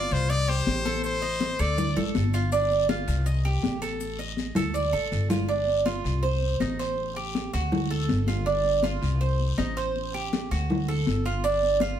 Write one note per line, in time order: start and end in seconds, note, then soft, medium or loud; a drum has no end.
0.00 0.29 F4 medium
0.00 0.14 D5 loud
0.11 0.63 C2 loud
0.11 0.31 C5 loud
0.11 high conga soft
0.11 short guiro medium
0.11 maracas medium
0.30 0.50 D5 loud
0.30 0.48 D#5 medium
0.30 high conga soft
0.30 long guiro medium
0.30 maracas medium
0.48 0.84 G4 medium
0.48 1.04 C5 loud
0.48 high conga soft
0.48 maracas soft
0.66 1.53 A1 medium
0.66 high conga medium
0.66 short guiro medium
0.66 maracas soft
0.85 1.21 A4 medium
0.85 high conga medium
0.85 short guiro medium
0.85 maracas medium
1.04 1.62 C5 medium
1.04 long guiro medium
1.04 maracas medium
1.22 1.58 D#5 medium
1.22 high conga soft
1.22 maracas soft
1.40 high conga medium
1.40 short guiro medium
1.40 maracas soft
1.59 1.94 D2 loud
1.59 1.77 A4 medium
1.59 1.97 D5 loud
1.59 high conga soft
1.59 short guiro medium
1.59 maracas medium
1.77 1.96 D5 medium
1.77 high conga soft
1.77 low conga medium
1.77 long guiro medium
1.77 maracas medium
1.96 2.13 A1 medium
1.96 2.32 A4 medium
1.96 high conga soft
1.96 low conga medium
1.96 maracas soft
2.15 3.02 G1 loud
2.15 high conga medium
2.15 short guiro medium
2.15 maracas soft
2.34 2.52 F4 medium
2.34 short guiro medium
2.34 maracas medium
2.52 2.88 D4 medium
2.52 high conga soft
2.52 long guiro medium
2.52 maracas medium
2.71 high conga soft
2.71 maracas soft
2.89 3.25 F4 medium
2.89 high conga medium
2.89 short guiro medium
2.89 maracas soft
3.08 3.59 C2 loud
3.08 short guiro medium
3.08 maracas medium
3.26 3.44 D#5 medium
3.26 high conga soft
3.26 long guiro medium
3.26 maracas medium
3.45 3.81 G4 medium
3.45 high conga soft
3.45 maracas soft
3.63 4.50 A1 loud
3.63 high conga medium
3.63 short guiro medium
3.63 maracas soft
3.82 4.18 A4 medium
3.82 short guiro medium
3.82 maracas medium
4.00 high conga soft
4.00 long guiro medium
4.00 maracas medium
4.18 4.55 D#5 medium
4.18 high conga soft
4.18 maracas soft
4.37 high conga medium
4.37 short guiro medium
4.37 maracas soft
4.55 4.90 D2 loud
4.55 4.74 A4 medium
4.55 low conga loud
4.55 short guiro medium
4.55 maracas medium
4.74 4.92 D5 medium
4.74 long guiro medium
4.74 maracas medium
4.93 5.10 A1 medium
4.93 5.29 A4 medium
4.93 maracas soft
5.12 5.99 G1 loud
5.12 short guiro medium
5.12 maracas soft
5.30 5.48 F4 medium
5.30 low conga medium
5.30 short guiro medium
5.30 maracas medium
5.49 5.85 D4 medium
5.49 long guiro medium
5.67 high conga soft
5.86 6.22 F4 medium
5.86 high conga medium
5.86 short guiro medium
6.04 6.56 C2 loud
6.04 high conga soft
6.04 short guiro medium
6.23 6.59 C5 medium
6.23 high conga soft
6.23 long guiro medium
6.42 high conga soft
6.60 7.47 A1 loud
6.60 6.78 D#4 medium
6.60 high conga medium
6.60 short guiro medium
6.79 7.15 C5 medium
6.79 short guiro medium
6.97 high conga soft
6.97 long guiro medium
7.16 7.52 G4 medium
7.16 high conga soft
7.35 high conga medium
7.35 short guiro medium
7.53 8.05 D2 loud
7.53 7.89 F#4 medium
7.53 high conga soft
7.53 short guiro medium
7.72 high conga soft
7.72 low conga medium
7.72 long guiro medium
7.91 8.27 A4 medium
7.91 high conga soft
8.09 8.96 G1 loud
8.09 high conga medium
8.09 short guiro medium
8.27 8.46 F4 medium
8.27 high conga medium
8.27 short guiro medium
8.46 8.82 D4 medium
8.46 high conga soft
8.46 long guiro medium
8.64 high conga soft
8.83 9.20 F4 medium
8.83 high conga medium
8.83 short guiro medium
9.02 9.54 C2 loud
9.02 high conga soft
9.02 short guiro medium
9.21 9.57 C5 medium
9.21 high conga soft
9.21 long guiro medium
9.40 high conga soft
9.58 10.45 A1 medium
9.58 9.76 D#4 medium
9.58 high conga medium
9.58 short guiro medium
9.77 10.13 C5 medium
9.77 short guiro medium
9.96 high conga soft
9.96 long guiro medium
10.14 10.50 G4 medium
10.14 high conga soft
10.33 high conga medium
10.33 short guiro medium
10.51 11.03 D2 loud
10.51 10.87 F#4 medium
10.51 high conga soft
10.51 short guiro medium
10.70 high conga soft
10.70 low conga medium
10.70 long guiro medium
10.88 11.24 A4 medium
10.88 high conga soft
11.06 11.94 G1 medium
11.06 high conga medium
11.06 short guiro medium
11.25 11.44 F4 medium
11.25 short guiro medium
11.44 11.80 D4 medium
11.44 high conga soft
11.44 long guiro medium
11.44 maracas medium
11.62 high conga soft
11.62 maracas soft
11.80 12.00 F4 medium
11.80 high conga medium
11.80 short guiro medium
11.80 maracas soft